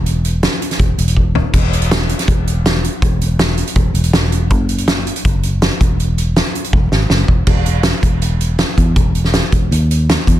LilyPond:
<<
  \new Staff \with { instrumentName = "Fingered electric bass" } { \clef bass \time 4/4 \key e \major \tempo 4 = 162 e,,4. r8 e,,8 e,,4. | e,,2 e,,2 | e,,2 e,,8 e,,4. | fis,,2 fis,,4. e,,8~ |
e,,4. r8 e,,8 gis,,8 fis,,8 e,,8 | e,,4. e,,2 e,8 | e,,4. e,,8 dis,4. e,8 | }
  \new DrumStaff \with { instrumentName = "Drums" } \drummode { \time 4/4 hh8 hh8 <hh sn>8 hh16 <hh sn>16 <hh bd>8 hh16 hh16 bd8 tomfh8 | <cymc hh bd>8 hh16 hh16 <hh sn>8 hh16 <hh sn>16 <hh bd>8 hh8 <hh sn>8 hh8 | <hh bd>8 hh8 <hh sn>8 hh16 hh16 <hh bd>8 hh16 hh16 <hh sn>8 hh8 | <hh bd>8 hh16 hh16 <hh sn>8 hh16 hh16 <hh bd>8 hh8 <hh sn>8 <hh bd>8 |
hh8 hh8 <hh sn>8 hh16 hh16 <bd tommh>8 sn8 sn8 bd8 | <cymc bd>8 hh8 <hh sn>8 <hh bd>8 hh8 hh8 <hh sn>8 <hh bd>8 | <hh bd>8 hh16 sn16 <hh sn>8 <hh bd>8 hh8 hh8 <hh sn>8 <hh bd>8 | }
>>